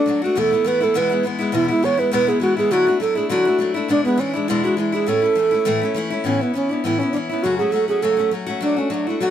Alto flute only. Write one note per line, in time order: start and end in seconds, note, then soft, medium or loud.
0.00 0.22 D4 medium
0.24 0.40 F#4 medium
0.39 0.69 A4 loud
0.67 0.85 B4 loud
0.84 0.99 A4 medium
0.97 1.26 B4 medium
1.55 1.69 E4 loud
1.70 1.86 E4 medium
1.84 2.01 C#5 medium
1.99 2.13 B4 medium
2.14 2.30 B4 loud
2.29 2.41 G#4 medium
2.42 2.57 F#4 medium
2.58 2.73 G#4 medium
2.72 3.01 F#4 loud
3.01 3.18 A4 medium
3.17 3.30 G#4 medium
3.30 3.72 F#4 medium
3.90 4.04 D4 loud
4.05 4.21 B3 medium
4.20 4.37 C#4 medium
4.36 4.50 D4 medium
4.48 4.66 E4 medium
4.64 4.78 F#4 medium
4.78 4.96 E4 medium
4.95 5.10 G#4 medium
5.08 5.96 A4 loud
6.25 6.43 C#4 medium
6.42 6.55 B3 medium
6.55 6.73 C#4 medium
6.71 6.84 D4 medium
6.85 7.00 E4 medium
6.99 7.11 C#4 medium
7.12 7.18 D4 medium
7.30 7.44 E4 medium
7.43 7.58 F#4 loud
7.58 7.73 G#4 medium
7.72 7.88 A4 medium
7.88 8.03 G#4 medium
8.02 8.32 A4 medium
8.62 8.80 D4 medium
8.78 8.93 C#4 medium
8.91 9.09 D4 medium
9.08 9.22 E4 medium
9.21 9.30 F#4 medium